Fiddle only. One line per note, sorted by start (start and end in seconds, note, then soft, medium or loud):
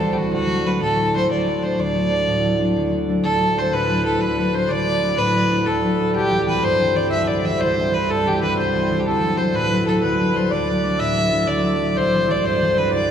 0.00 0.14 A4 medium
0.13 0.19 G4 medium
0.18 0.32 F#4 medium
0.33 0.68 F#4 loud
0.67 0.82 B4 medium
0.83 1.13 A4 loud
1.16 1.30 C5 medium
1.31 1.65 D5 medium
1.63 1.81 C5 medium
1.79 2.93 D5 loud
3.24 3.60 A4 loud
3.59 3.75 C5 medium
3.73 4.05 B4 medium
4.06 4.22 A4 medium
4.21 4.56 B4 medium
4.55 4.73 C5 medium
4.72 5.20 D5 loud
5.18 5.68 B4 loud
5.66 6.15 A4 medium
6.16 6.46 G4 loud
6.49 6.66 B4 medium
6.64 6.98 C5 loud
6.96 7.12 D5 medium
7.12 7.29 E5 medium
7.28 7.46 D5 medium
7.45 7.62 E5 medium
7.61 7.95 C5 medium
7.94 8.12 B4 medium
8.11 8.29 A4 medium
8.27 8.42 G4 medium
8.43 8.57 B4 medium
8.59 9.01 C5 medium
9.00 9.08 G4 medium
9.06 9.39 A4 loud
9.38 9.57 C5 medium
9.55 9.87 B4 loud
9.87 10.02 A4 medium
10.03 10.37 B4 medium
10.36 10.52 C5 medium
10.51 11.01 D5 medium
11.00 11.49 E5 loud
11.48 11.98 D5 medium
11.97 12.32 C5 loud
12.31 12.47 D5 medium
12.46 12.80 C5 medium
12.78 12.93 B4 medium
12.94 13.11 D5 medium